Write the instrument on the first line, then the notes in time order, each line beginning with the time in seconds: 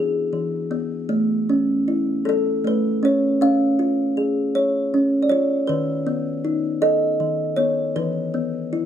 kalimba
Already playing: E3 B3 E4 G#4
0.33 E3
0.71 B3
1.09 A3
1.49 C#4
1.88 E4
2.25 A4
2.64 A3 B4
3.03 C#4 C#5
3.41 C#4 F5
3.79 F4
4.17 G#4
4.55 C#5
4.94 C#4
5.22 D5
5.29 F4 C#5
5.67 D#3 B4
6.07 B3
6.45 D#4
6.82 A4 D#5
7.20 D#3
7.56 B3 C#5
7.96 E3 B4
8.34 B3
8.73 E4